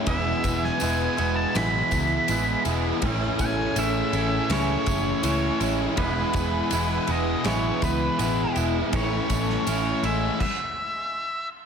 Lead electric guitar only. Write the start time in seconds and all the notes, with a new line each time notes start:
0.08 E5
0.65 G#5
1.36 A5
1.56 B5
3.41 G#5
3.80 E5
4.52 C#5
5.98 B4
7.11 D#5
7.45 C#5
7.85 B4
8.96 C#5
10.05 E5
10.42 E5